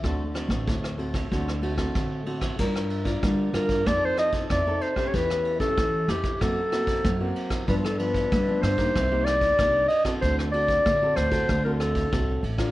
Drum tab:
CC |----------------|x---------------|----------------|----------------|
RD |x-xxx-xxx-xxx-xx|--xxx-xxx-xxx-xx|x-xxx-xxx-xxx-xx|x-xxx-xxx-xxx-xx|
SD |r-rr-r-r-r-rr--r|-r--r-r-r-r-r--r|-r--r-r-r-r-r--r|-r--r-r-r-r-r--r|
BD |o--oo--oo--oo--o|o--oo--oo--oo--o|o--oo--oo--oo--o|o--oo--oo--oo--o|

CC |----------------|
RD |x-xxx-xxx-xxx-xx|
SD |-r--r-r-r-r-r--r|
BD |o--oo--oo--oo--o|